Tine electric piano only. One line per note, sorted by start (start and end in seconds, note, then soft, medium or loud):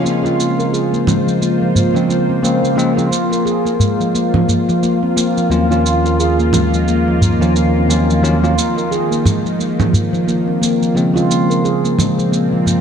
0.03 0.19 C#3 medium
0.03 0.20 F3 medium
0.03 0.20 G#3 medium
0.03 0.20 C4 medium
0.22 1.89 C#3 medium
0.22 1.90 F3 medium
0.22 1.91 G#3 medium
0.26 1.91 C4 medium
1.94 2.40 C#3 medium
1.94 2.40 F3 medium
1.94 2.40 G#3 medium
1.94 2.41 C4 medium
2.43 2.74 C#3 medium
2.43 2.74 F3 medium
2.43 2.75 G#3 medium
2.43 2.75 C4 medium
2.76 2.91 C#3 medium
2.76 2.92 F3 medium
2.76 2.92 G#3 medium
2.76 2.92 C4 medium
2.96 3.07 C#3 medium
2.96 3.08 F3 medium
2.96 3.08 G#3 medium
2.96 3.08 C4 medium
5.50 5.65 D#2 medium
5.50 5.65 F#3 medium
5.50 5.66 A#3 medium
5.50 5.66 C#4 medium
5.50 5.66 F4 medium
5.68 7.35 D#2 medium
5.68 7.36 A#3 medium
5.68 7.37 C#4 medium
5.68 7.37 F4 medium
7.40 7.85 D#2 medium
7.40 7.86 A#3 medium
7.40 7.86 C#4 medium
7.40 7.86 F4 medium
7.88 8.19 D#2 medium
7.88 8.20 F#3 medium
7.88 8.20 A#3 medium
7.88 8.20 C#4 medium
7.88 8.20 F4 medium
8.22 8.37 D#2 medium
8.22 8.37 F#3 medium
8.22 8.37 A#3 medium
8.22 8.38 C#4 medium
8.22 8.38 F4 medium
8.43 8.53 D#2 medium
8.43 8.53 F#3 medium
8.43 8.53 A#3 medium
8.43 8.54 C#4 medium
8.43 8.54 F4 medium
10.95 11.11 C#3 medium
10.95 11.11 F3 medium
10.95 11.11 G#3 medium
10.95 11.12 C4 medium
11.14 12.81 C#3 medium
11.14 12.81 F3 medium
11.14 12.81 G#3 medium
11.18 12.81 C4 medium